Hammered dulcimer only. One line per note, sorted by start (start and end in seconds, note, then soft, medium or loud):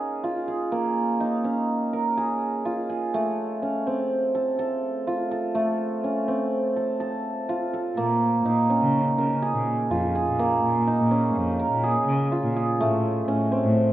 0.00 0.71 A#3 medium
0.00 1.44 C#4 soft
0.00 1.20 D#4 soft
0.00 0.23 F4 medium
0.00 0.47 G#4 medium
0.00 1.93 A#4 soft
0.24 2.65 F4 medium
0.48 2.17 G#4 soft
0.72 3.20 A#3 medium
1.20 4.81 D#4 medium
1.44 3.62 C#4 soft
1.93 3.20 A#4 soft
2.17 2.89 G#4 medium
2.65 5.07 F4 medium
2.89 3.20 G#4 soft
3.14 5.54 A3 medium
3.62 3.93 C#4 soft
3.87 6.10 C4 medium
4.35 4.58 A4 soft
4.59 5.31 A4 medium
5.07 7.49 F4 medium
5.31 6.76 A4 soft
5.55 8.03 A3 medium
6.04 6.34 C#4 soft
6.28 8.76 C4 soft
6.76 7.00 A4 soft
7.00 7.73 A4 medium
7.49 9.90 F4 medium
7.73 8.03 A4 soft
7.97 10.39 A#3 medium
8.45 10.87 D#4 soft
8.70 11.11 C#4 soft
9.18 11.59 A#4 soft
9.42 10.15 G#4 medium
9.91 12.31 F4 medium
10.15 11.83 G#4 medium
10.39 12.86 A#3 medium
10.87 13.93 D#4 medium
11.11 13.27 C#4 medium
11.59 12.86 A#4 soft
11.84 12.56 G#4 medium
12.32 13.93 F4 medium
12.56 12.86 G#4 medium
12.80 13.93 A3 medium
13.28 13.58 C#4 medium
13.52 13.93 C4 medium